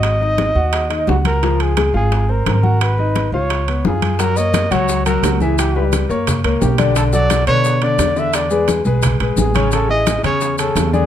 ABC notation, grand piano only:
X:1
M:4/4
L:1/8
Q:1/4=174
K:Db
V:1 name="Grand piano"
[Gg] [Ee]2 [Gg]2 [Ee] [Gg]2 | [F,F]2 [A,A] [Ff]2 [Cc]2 [Gg]- | [Gg] [Ee]2 [Ff]2 [_C_c] [Ff]2 | [K:Blyd] [F,Ff] [A,Ac]2 [F,Ff]2 [F,Ff]2 [=E,=E=e]- |
[=E,=E=e] [=G,=GB]2 [A,Ac]2 [A,Ac]2 [=D,=D=d] | [=D,=D=d] [F,F=A]2 [D,DB]2 [D,Dd]2 [D,Dd]- | [=D,=D=d] [G,GB]2 [G,GB]2 [G,GB]2 [C,Cc] | [C,Cc] [=E,=EG]2 [C,Cc]2 [C,Cc]2 [=D,=D=d] |]